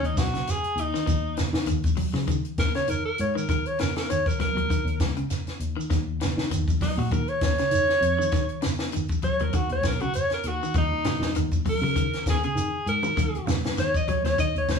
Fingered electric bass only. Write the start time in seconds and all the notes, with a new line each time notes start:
0.03 D#2
0.17 B1
0.63 muted fingered electric bass stroke
0.76 D#2
1.07 D#2
1.53 D#3
1.66 D#2
1.84 D#2
2.13 C#3
2.58 D#2
2.88 D#3
3.19 G#2
4.39 muted fingered electric bass stroke
4.54 D#2
4.70 muted fingered electric bass stroke
4.85 D#2
5.00 C#2
5.47 muted fingered electric bass stroke
5.59 D#2
5.90 D#2
6.37 D#3
6.50 D#2
6.67 D#2
6.97 A#2
7.42 D#2
7.71 D#3
8.01 F2
9.23 muted fingered electric bass stroke
9.40 D#2
9.70 D#2
9.84 B1
10.31 muted fingered electric bass stroke
10.44 D#2
10.74 D#2
11.20 D#3
11.35 D#2
11.51 D#2
11.81 C#3
12.26 D#2
12.55 D#3
12.86 G#2
14.08 muted fingered electric bass stroke
14.24 D#2
14.55 D#2
14.69 C#2